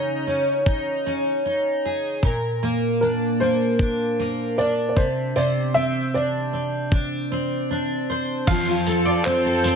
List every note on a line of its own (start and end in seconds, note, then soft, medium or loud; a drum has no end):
0.00 2.23 C#3 medium
0.00 0.26 C#4 medium
0.00 0.65 D#4 medium
0.00 1.84 G#4 medium
0.00 1.80 C#5 medium
0.27 1.05 C#4 soft
0.66 1.44 D#4 medium
0.66 kick loud
1.06 2.31 C#4 medium
1.45 2.31 D#4 medium
1.85 2.24 G#4 medium
2.23 5.05 A#2 medium
2.23 5.05 A#4 medium
2.23 kick medium
2.63 3.40 A#3 medium
3.01 3.80 D4 medium
3.01 3.10 A#4 medium
3.40 4.18 A#3 medium
3.40 4.54 C5 medium
3.79 4.58 D4 medium
3.79 kick loud
4.19 5.05 A#3 medium
4.58 5.39 D4 medium
4.58 4.87 D5 medium
4.89 4.96 D5 medium
4.96 5.35 C3 medium
4.96 5.33 C5 medium
4.96 kick medium
5.36 8.47 C3 medium
5.36 8.09 C5 medium
5.36 5.72 D5 medium
5.74 6.53 C4 medium
5.74 6.15 E5 loud
6.14 6.92 D4 medium
6.14 8.05 D5 medium
6.53 7.31 C4 soft
6.92 7.70 D4 medium
6.92 kick loud
7.32 9.26 C4 medium
7.71 8.56 D4 medium
8.10 8.87 C5 medium
8.47 9.76 F2 medium
8.47 9.76 F3 medium
8.47 9.76 C4 medium
8.47 9.76 A4 medium
8.47 9.76 C5 medium
8.47 8.66 F5 loud
8.47 kick loud
8.47 crash loud
8.68 9.05 F4 medium
8.87 9.45 A4 medium
8.87 tambourine medium
9.05 9.76 F4 medium
9.05 9.24 D5 medium
9.25 9.64 C4 medium
9.25 9.76 C5 medium
9.25 9.62 C5 medium
9.25 clap loud
9.46 9.76 A4 medium
9.64 9.76 C4 medium
9.64 9.76 C5 medium
9.64 tambourine medium